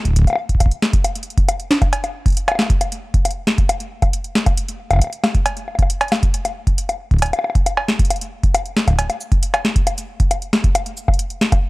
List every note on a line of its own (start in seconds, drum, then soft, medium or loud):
0.05 kick medium
0.05 closed hi-hat soft
0.08 kick medium
0.11 kick medium
0.13 kick medium
0.13 closed hi-hat medium
0.16 kick medium
0.19 kick loud
0.22 kick loud
0.24 kick loud
0.24 closed hi-hat soft
0.24 high bongo soft
0.30 high bongo soft
0.33 high bongo medium
0.35 high bongo medium
0.49 kick medium
0.49 closed hi-hat soft
0.55 kick medium
0.60 kick medium
0.60 closed hi-hat medium
0.60 high bongo soft
0.66 kick loud
0.71 closed hi-hat soft
0.82 snare loud
0.93 kick loud
0.93 closed hi-hat soft
1.04 closed hi-hat medium
1.04 high bongo medium
1.15 closed hi-hat soft
1.23 closed hi-hat soft
1.30 closed hi-hat soft
1.38 kick loud
1.38 closed hi-hat soft
1.49 closed hi-hat medium
1.49 high bongo medium
1.60 closed hi-hat soft
1.71 snare loud
1.82 kick loud
1.82 closed hi-hat soft
1.82 high bongo medium
1.93 closed hi-hat medium
1.93 cowbell medium
2.04 closed hi-hat soft
2.04 high bongo medium
2.26 kick loud
2.26 closed hi-hat soft
2.28 closed hi-hat soft
2.30 closed hi-hat soft
2.32 closed hi-hat soft
2.35 closed hi-hat soft
2.37 closed hi-hat medium
2.48 closed hi-hat soft
2.48 cowbell medium
2.48 high bongo medium
2.52 high bongo medium
2.55 snare loud
2.55 high bongo soft
2.59 high bongo soft
2.63 high bongo soft
2.66 kick loud
2.66 closed hi-hat soft
2.66 high bongo soft
2.81 closed hi-hat medium
2.81 high bongo soft
2.92 closed hi-hat medium
3.14 kick loud
3.14 closed hi-hat soft
3.25 closed hi-hat medium
3.25 high bongo medium
3.31 closed hi-hat soft
3.47 snare loud
3.58 kick loud
3.58 closed hi-hat soft
3.69 closed hi-hat medium
3.69 high bongo medium
3.80 closed hi-hat soft
4.02 kick loud
4.02 closed hi-hat soft
4.02 high bongo medium
4.13 closed hi-hat medium
4.24 closed hi-hat soft
4.35 snare loud
4.46 kick loud
4.46 closed hi-hat soft
4.46 high bongo medium
4.57 closed hi-hat medium
4.68 closed hi-hat medium
4.91 kick medium
4.91 closed hi-hat soft
4.91 high bongo medium
4.93 kick medium
4.93 high bongo medium
4.95 kick medium
4.95 high bongo medium
4.97 kick medium
4.97 high bongo soft
4.99 kick loud
4.99 closed hi-hat medium
4.99 high bongo soft
5.04 high bongo soft
5.07 high bongo soft
5.10 closed hi-hat soft
5.10 high bongo soft
5.24 snare loud
5.24 high bongo medium
5.35 kick loud
5.35 closed hi-hat soft
5.46 closed hi-hat medium
5.46 cowbell medium
5.57 closed hi-hat soft
5.68 high bongo soft
5.75 kick loud
5.75 closed hi-hat soft
5.75 high bongo soft
5.82 high bongo soft
5.90 closed hi-hat medium
6.01 closed hi-hat soft
6.01 cowbell medium
6.08 snare loud
6.08 closed hi-hat soft
6.08 high bongo medium
6.16 closed hi-hat soft
6.23 kick loud
6.23 closed hi-hat soft
6.34 closed hi-hat medium
6.45 closed hi-hat medium
6.45 high bongo soft
6.67 kick medium
6.67 closed hi-hat soft
6.78 closed hi-hat medium
6.89 closed hi-hat soft
6.89 high bongo medium
7.11 kick loud
7.11 closed hi-hat soft
7.14 kick medium
7.17 kick medium
7.17 closed hi-hat soft
7.22 kick soft
7.22 closed hi-hat medium
7.22 cowbell medium
7.25 kick soft
7.25 closed hi-hat soft
7.28 kick soft
7.30 kick soft
7.30 closed hi-hat soft
7.30 high bongo medium
7.39 high bongo medium
7.44 high bongo medium
7.50 high bongo soft
7.55 kick loud
7.55 closed hi-hat soft
7.66 closed hi-hat medium
7.66 high bongo medium
7.77 cowbell medium
7.88 snare loud
7.99 kick loud
7.99 closed hi-hat soft
8.05 closed hi-hat soft
8.10 closed hi-hat medium
8.10 high bongo medium
8.16 closed hi-hat soft
8.21 closed hi-hat soft
8.43 kick loud
8.43 closed hi-hat soft
8.54 closed hi-hat medium
8.54 high bongo medium
8.66 closed hi-hat soft
8.77 snare loud
8.88 kick loud
8.88 closed hi-hat soft
8.88 high bongo medium
8.90 kick medium
8.93 kick medium
8.99 kick medium
8.99 closed hi-hat medium
8.99 cowbell medium
9.01 kick soft
9.04 kick soft
9.07 kick soft
9.07 closed hi-hat soft
9.07 high bongo medium
9.21 cabasa medium
9.32 kick loud
9.32 closed hi-hat soft
9.43 closed hi-hat medium
9.54 closed hi-hat soft
9.54 cowbell medium
9.54 high bongo medium
9.65 snare loud
9.76 kick loud
9.76 closed hi-hat medium
9.87 closed hi-hat medium
9.87 high bongo medium
9.98 closed hi-hat medium
9.98 cabasa medium
10.20 kick loud
10.20 closed hi-hat soft
10.31 closed hi-hat medium
10.31 high bongo medium
10.42 closed hi-hat soft
10.53 snare loud
10.64 kick loud
10.64 closed hi-hat soft
10.75 closed hi-hat medium
10.75 high bongo medium
10.86 closed hi-hat soft
10.97 cabasa medium
11.08 kick loud
11.08 high bongo medium
11.14 closed hi-hat soft
11.19 closed hi-hat medium
11.30 closed hi-hat soft
11.41 snare loud
11.52 kick loud
11.52 closed hi-hat medium
11.52 high bongo medium